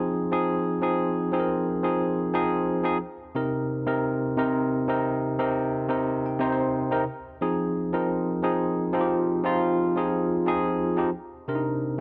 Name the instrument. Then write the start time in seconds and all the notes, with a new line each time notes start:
tine electric piano
Already playing: F3 C4 D#4 G#4
0.31 F3 C4 D#4 G#4
0.82 F3 C4 D#4 G#4
1.32 F3 C4 D#4 G#4
1.40 A#4
1.83 F3 C4 D#4 G#4
2.33 F3 C4 D#4 G#4
2.84 F3 C4 D#4 G#4
3.35 C3 C4 D#4 A#4
3.86 C3 C4 D#4 A#4
4.37 C3 C4 D#4 A#4
4.88 C3 C4 D#4 A#4
5.39 C3 C4 D#4 A#4
5.89 C3 C4 D#4 A#4
6.26 G5
6.39 C3 C4 D#4 C5
6.52 C5
6.91 C3 C4 D#4 A#4
7.41 F3 C4 D#4 G#4
7.93 F3 C4 D#4 A#4
8.42 F3 C4 D#4 G#4
8.93 F3 C4 D#4 F4
9.01 G4
9.44 F3 C4 D#4 F4
9.96 F3 C4 D#4 G#4
10.46 F3 C4 D#4 G#4
10.97 F3 C4 D#4 G4
11.48 C3 C4 D4 A#4
11.55 D#4